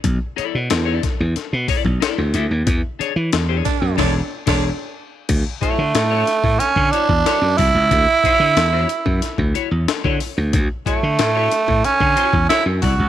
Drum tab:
CC |----------------|--------x--x----|x---------------|----------------|
HH |x-x-x-x-x-o-x-x-|x-x-x-x---------|x-x-x-x-x-x-x-o-|x-x-x-x-x-x-x-o-|
SD |----o-o-o---o---|----o-o-o--o----|----o-o-o---o---|----o---o---o---|
BD |o-----o---oo----|o-----o-o--o----|o-o----o-o-o--o-|o-o----o-o---o--|

CC |----------------|
HH |x-x-x-x-x-x-x-o-|
SD |----o-o-o---o---|
BD |o-o----o-o-o--o-|